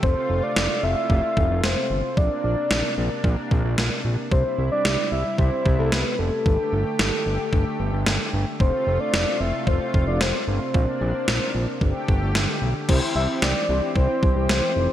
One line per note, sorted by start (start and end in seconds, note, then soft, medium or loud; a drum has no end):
0.00 0.15 F1 loud
0.00 6.42 C3 medium
0.00 2.13 A3 medium
0.00 2.15 F4 medium
0.00 0.45 C5 loud
0.00 kick loud
0.30 0.42 F1 loud
0.43 0.83 D5 loud
0.56 0.69 F1 loud
0.56 snare loud
0.83 0.95 F1 loud
0.83 1.60 E5 loud
1.10 1.22 F1 loud
1.10 kick medium
1.37 1.49 F1 loud
1.37 kick medium
1.50 1.62 F1 loud
1.64 1.76 F1 loud
1.64 2.19 C5 medium
1.64 snare loud
1.90 2.02 G1 medium
2.17 2.29 A#1 loud
2.17 4.29 A#3 medium
2.17 4.29 D4 medium
2.17 2.44 D5 loud
2.17 kick loud
2.44 2.56 A#1 medium
2.44 2.94 D5 medium
2.71 2.83 A#1 loud
2.71 snare loud
2.98 3.10 A#1 loud
3.24 3.36 A#1 loud
3.24 kick medium
3.51 3.63 A#1 loud
3.51 kick medium
3.65 3.77 A#1 medium
3.78 3.90 A#1 loud
3.78 snare loud
4.05 4.17 A#1 medium
4.32 4.44 C2 loud
4.32 6.44 G3 medium
4.32 6.44 E4 medium
4.32 4.69 C5 loud
4.32 kick loud
4.58 4.70 C2 medium
4.72 5.09 D5 loud
4.85 4.97 C2 loud
4.85 snare loud
5.12 5.24 C2 loud
5.12 5.37 E5 loud
5.38 5.51 C2 loud
5.38 5.76 C5 loud
5.38 kick medium
5.66 5.78 C2 loud
5.66 kick medium
5.79 5.91 C2 loud
5.79 5.94 A4 medium
5.92 6.04 C2 loud
5.92 6.21 B4 loud
5.92 snare loud
6.19 6.31 F1 medium
6.19 7.80 A4 medium
6.46 6.58 G1 loud
6.46 8.58 D3 medium
6.46 8.58 A3 medium
6.46 8.58 G4 medium
6.46 kick loud
6.73 6.85 G1 loud
6.99 7.11 G1 loud
6.99 snare loud
7.26 7.38 G1 loud
7.53 7.65 G1 loud
7.53 kick medium
7.80 7.92 G1 medium
7.93 8.05 G1 loud
8.06 8.19 G1 loud
8.06 snare loud
8.33 8.45 G1 medium
8.60 8.72 F1 loud
8.60 11.78 C3 medium
8.60 10.72 A3 medium
8.60 10.72 F4 medium
8.60 9.02 C5 loud
8.60 kick loud
8.87 8.99 F1 loud
9.00 9.42 D5 loud
9.14 9.26 F1 loud
9.14 snare loud
9.40 9.52 F1 medium
9.40 9.67 E5 loud
9.67 9.79 F1 loud
9.67 10.05 C5 loud
9.67 kick medium
9.94 10.06 F1 loud
9.94 kick medium
10.07 10.19 F1 loud
10.07 10.22 D5 medium
10.21 10.33 F1 medium
10.21 10.47 C5 medium
10.21 snare loud
10.48 10.60 G1 medium
10.48 12.04 C5 medium
10.74 10.86 A#1 loud
10.74 11.81 A#3 medium
10.74 11.81 D4 medium
10.74 kick loud
11.01 11.13 A#1 loud
11.28 11.40 A#1 loud
11.28 snare loud
11.55 11.67 A#1 loud
11.81 11.93 G1 loud
11.81 12.88 D3 medium
11.81 12.88 A3 medium
11.81 12.88 G4 medium
11.81 kick medium
12.08 12.20 G1 loud
12.08 kick medium
12.22 12.34 G1 loud
12.35 12.47 G1 loud
12.35 snare loud
12.62 12.74 B1 medium
12.89 13.01 C2 loud
12.89 14.93 E3 medium
12.89 13.53 C4 medium
12.89 14.93 C4 medium
12.89 13.53 E4 medium
12.89 13.53 G4 medium
12.89 14.93 G4 medium
12.89 13.53 C5 loud
12.89 kick loud
12.89 crash medium
13.15 13.27 C2 loud
13.15 13.28 E5 medium
13.42 13.54 C2 loud
13.42 13.92 D5 medium
13.42 snare loud
13.69 13.81 C2 loud
13.69 14.23 C4 medium
13.69 14.23 E4 medium
13.69 14.23 G4 medium
13.69 14.23 C5 medium
13.96 14.08 C2 loud
13.96 14.46 C5 loud
13.96 kick medium
14.23 14.35 C2 loud
14.23 kick medium
14.36 14.48 C2 loud
14.36 14.90 C4 medium
14.36 14.90 E4 medium
14.36 14.90 G4 medium
14.36 14.90 C5 medium
14.49 14.61 C2 loud
14.49 14.93 C5 medium
14.49 snare loud
14.76 14.88 F1 medium